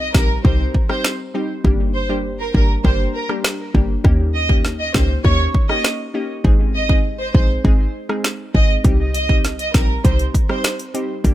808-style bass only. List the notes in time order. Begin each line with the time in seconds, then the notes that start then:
Already playing: C2
0.15 A#1
0.45 C2
1.65 G1
2.55 G#1
2.85 G1
3.75 G1
4.05 D#2
4.95 C#2
5.25 D#2
6.45 G#1
7.35 A#1
7.65 G#1
8.55 G#1
8.85 C2
9.75 A#1
10.05 C2
11.25 G1